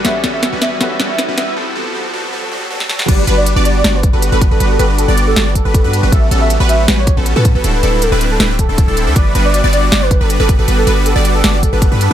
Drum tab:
CC |----------------|----------------|x---------------|----------------|
HH |x-x-x-x-x-x-x-x-|----------------|x-x-x-x-x-x-x-x-|x-x-x-x-x-x-x-x-|
SD |o-o-o-o-o-o-o-o-|-------------ooo|--------o-------|--------o-------|
BD |----------------|----------------|o---------o---o-|----------o-o---|

CC |----------------|----------------|----------------|----------------|
HH |x-x-x-x-x-x-x-x-|x-x-x-x-x-x-x-x-|x-x-x-x-x-x-x-x-|x-x-x-x-x-x-x-x-|
SD |--------o-------|--------o-------|--------o-------|--------o-------|
BD |o---------o---o-|----------o-o---|o---------o---o-|----------o-o---|